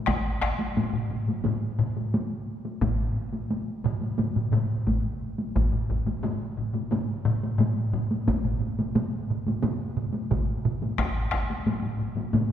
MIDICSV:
0, 0, Header, 1, 2, 480
1, 0, Start_track
1, 0, Tempo, 685714
1, 48, Time_signature, 4, 2, 24, 8
1, 4368, Tempo, 676437
1, 8825, End_track
2, 0, Start_track
2, 0, Title_t, "Taiko and cinematic ensemble drums"
2, 51, Note_on_c, 9, 37, 74
2, 53, Note_on_c, 9, 41, 91
2, 55, Note_on_c, 9, 48, 67
2, 121, Note_off_c, 9, 37, 0
2, 123, Note_off_c, 9, 41, 0
2, 125, Note_off_c, 9, 48, 0
2, 290, Note_on_c, 9, 41, 61
2, 293, Note_on_c, 9, 37, 74
2, 360, Note_off_c, 9, 41, 0
2, 363, Note_off_c, 9, 37, 0
2, 415, Note_on_c, 9, 48, 53
2, 485, Note_off_c, 9, 48, 0
2, 533, Note_on_c, 9, 45, 69
2, 538, Note_on_c, 9, 48, 69
2, 603, Note_off_c, 9, 45, 0
2, 608, Note_off_c, 9, 48, 0
2, 651, Note_on_c, 9, 45, 70
2, 721, Note_off_c, 9, 45, 0
2, 774, Note_on_c, 9, 45, 69
2, 844, Note_off_c, 9, 45, 0
2, 894, Note_on_c, 9, 45, 60
2, 898, Note_on_c, 9, 48, 48
2, 964, Note_off_c, 9, 45, 0
2, 968, Note_off_c, 9, 48, 0
2, 1012, Note_on_c, 9, 48, 68
2, 1014, Note_on_c, 9, 45, 94
2, 1082, Note_off_c, 9, 48, 0
2, 1084, Note_off_c, 9, 45, 0
2, 1252, Note_on_c, 9, 45, 98
2, 1322, Note_off_c, 9, 45, 0
2, 1376, Note_on_c, 9, 48, 53
2, 1446, Note_off_c, 9, 48, 0
2, 1498, Note_on_c, 9, 48, 65
2, 1568, Note_off_c, 9, 48, 0
2, 1856, Note_on_c, 9, 48, 50
2, 1926, Note_off_c, 9, 48, 0
2, 1970, Note_on_c, 9, 41, 91
2, 1972, Note_on_c, 9, 45, 96
2, 1977, Note_on_c, 9, 48, 64
2, 1978, Note_on_c, 9, 47, 84
2, 2040, Note_off_c, 9, 41, 0
2, 2042, Note_off_c, 9, 45, 0
2, 2047, Note_off_c, 9, 48, 0
2, 2048, Note_off_c, 9, 47, 0
2, 2334, Note_on_c, 9, 48, 54
2, 2404, Note_off_c, 9, 48, 0
2, 2455, Note_on_c, 9, 48, 62
2, 2525, Note_off_c, 9, 48, 0
2, 2689, Note_on_c, 9, 45, 91
2, 2692, Note_on_c, 9, 47, 98
2, 2759, Note_off_c, 9, 45, 0
2, 2762, Note_off_c, 9, 47, 0
2, 2811, Note_on_c, 9, 48, 48
2, 2881, Note_off_c, 9, 48, 0
2, 2930, Note_on_c, 9, 45, 61
2, 2932, Note_on_c, 9, 47, 65
2, 2932, Note_on_c, 9, 48, 68
2, 3000, Note_off_c, 9, 45, 0
2, 3002, Note_off_c, 9, 47, 0
2, 3002, Note_off_c, 9, 48, 0
2, 3048, Note_on_c, 9, 45, 65
2, 3053, Note_on_c, 9, 47, 68
2, 3118, Note_off_c, 9, 45, 0
2, 3123, Note_off_c, 9, 47, 0
2, 3165, Note_on_c, 9, 47, 90
2, 3168, Note_on_c, 9, 45, 98
2, 3171, Note_on_c, 9, 48, 47
2, 3235, Note_off_c, 9, 47, 0
2, 3238, Note_off_c, 9, 45, 0
2, 3241, Note_off_c, 9, 48, 0
2, 3408, Note_on_c, 9, 41, 69
2, 3411, Note_on_c, 9, 48, 61
2, 3478, Note_off_c, 9, 41, 0
2, 3481, Note_off_c, 9, 48, 0
2, 3769, Note_on_c, 9, 48, 50
2, 3839, Note_off_c, 9, 48, 0
2, 3888, Note_on_c, 9, 45, 67
2, 3889, Note_on_c, 9, 48, 58
2, 3892, Note_on_c, 9, 41, 86
2, 3958, Note_off_c, 9, 45, 0
2, 3959, Note_off_c, 9, 48, 0
2, 3962, Note_off_c, 9, 41, 0
2, 4006, Note_on_c, 9, 45, 64
2, 4076, Note_off_c, 9, 45, 0
2, 4124, Note_on_c, 9, 45, 63
2, 4129, Note_on_c, 9, 41, 69
2, 4194, Note_off_c, 9, 45, 0
2, 4199, Note_off_c, 9, 41, 0
2, 4243, Note_on_c, 9, 45, 66
2, 4250, Note_on_c, 9, 48, 51
2, 4313, Note_off_c, 9, 45, 0
2, 4320, Note_off_c, 9, 48, 0
2, 4360, Note_on_c, 9, 45, 96
2, 4370, Note_on_c, 9, 48, 66
2, 4430, Note_off_c, 9, 45, 0
2, 4441, Note_off_c, 9, 48, 0
2, 4604, Note_on_c, 9, 45, 68
2, 4675, Note_off_c, 9, 45, 0
2, 4724, Note_on_c, 9, 45, 61
2, 4731, Note_on_c, 9, 48, 52
2, 4795, Note_off_c, 9, 45, 0
2, 4801, Note_off_c, 9, 48, 0
2, 4843, Note_on_c, 9, 45, 94
2, 4854, Note_on_c, 9, 48, 73
2, 4914, Note_off_c, 9, 45, 0
2, 4924, Note_off_c, 9, 48, 0
2, 5086, Note_on_c, 9, 45, 100
2, 5157, Note_off_c, 9, 45, 0
2, 5214, Note_on_c, 9, 48, 62
2, 5285, Note_off_c, 9, 48, 0
2, 5326, Note_on_c, 9, 45, 96
2, 5335, Note_on_c, 9, 48, 71
2, 5397, Note_off_c, 9, 45, 0
2, 5406, Note_off_c, 9, 48, 0
2, 5569, Note_on_c, 9, 45, 92
2, 5640, Note_off_c, 9, 45, 0
2, 5693, Note_on_c, 9, 48, 62
2, 5764, Note_off_c, 9, 48, 0
2, 5809, Note_on_c, 9, 47, 61
2, 5813, Note_on_c, 9, 48, 80
2, 5814, Note_on_c, 9, 41, 83
2, 5880, Note_off_c, 9, 47, 0
2, 5884, Note_off_c, 9, 48, 0
2, 5885, Note_off_c, 9, 41, 0
2, 5935, Note_on_c, 9, 47, 70
2, 6005, Note_off_c, 9, 47, 0
2, 6052, Note_on_c, 9, 47, 66
2, 6123, Note_off_c, 9, 47, 0
2, 6174, Note_on_c, 9, 47, 64
2, 6176, Note_on_c, 9, 48, 61
2, 6245, Note_off_c, 9, 47, 0
2, 6247, Note_off_c, 9, 48, 0
2, 6293, Note_on_c, 9, 48, 78
2, 6294, Note_on_c, 9, 47, 95
2, 6364, Note_off_c, 9, 48, 0
2, 6365, Note_off_c, 9, 47, 0
2, 6541, Note_on_c, 9, 47, 73
2, 6612, Note_off_c, 9, 47, 0
2, 6657, Note_on_c, 9, 48, 58
2, 6659, Note_on_c, 9, 47, 63
2, 6728, Note_off_c, 9, 48, 0
2, 6729, Note_off_c, 9, 47, 0
2, 6775, Note_on_c, 9, 48, 82
2, 6778, Note_on_c, 9, 47, 90
2, 6846, Note_off_c, 9, 48, 0
2, 6849, Note_off_c, 9, 47, 0
2, 7014, Note_on_c, 9, 47, 92
2, 7085, Note_off_c, 9, 47, 0
2, 7136, Note_on_c, 9, 48, 59
2, 7207, Note_off_c, 9, 48, 0
2, 7255, Note_on_c, 9, 41, 80
2, 7258, Note_on_c, 9, 47, 89
2, 7258, Note_on_c, 9, 48, 71
2, 7326, Note_off_c, 9, 41, 0
2, 7329, Note_off_c, 9, 47, 0
2, 7329, Note_off_c, 9, 48, 0
2, 7498, Note_on_c, 9, 47, 91
2, 7569, Note_off_c, 9, 47, 0
2, 7618, Note_on_c, 9, 48, 55
2, 7689, Note_off_c, 9, 48, 0
2, 7733, Note_on_c, 9, 37, 71
2, 7735, Note_on_c, 9, 41, 106
2, 7740, Note_on_c, 9, 48, 66
2, 7804, Note_off_c, 9, 37, 0
2, 7806, Note_off_c, 9, 41, 0
2, 7810, Note_off_c, 9, 48, 0
2, 7972, Note_on_c, 9, 37, 68
2, 7978, Note_on_c, 9, 41, 78
2, 8043, Note_off_c, 9, 37, 0
2, 8049, Note_off_c, 9, 41, 0
2, 8100, Note_on_c, 9, 48, 55
2, 8171, Note_off_c, 9, 48, 0
2, 8214, Note_on_c, 9, 45, 68
2, 8218, Note_on_c, 9, 48, 64
2, 8285, Note_off_c, 9, 45, 0
2, 8289, Note_off_c, 9, 48, 0
2, 8333, Note_on_c, 9, 45, 65
2, 8404, Note_off_c, 9, 45, 0
2, 8447, Note_on_c, 9, 45, 65
2, 8518, Note_off_c, 9, 45, 0
2, 8567, Note_on_c, 9, 45, 68
2, 8574, Note_on_c, 9, 48, 54
2, 8638, Note_off_c, 9, 45, 0
2, 8645, Note_off_c, 9, 48, 0
2, 8690, Note_on_c, 9, 45, 92
2, 8691, Note_on_c, 9, 48, 72
2, 8761, Note_off_c, 9, 45, 0
2, 8762, Note_off_c, 9, 48, 0
2, 8825, End_track
0, 0, End_of_file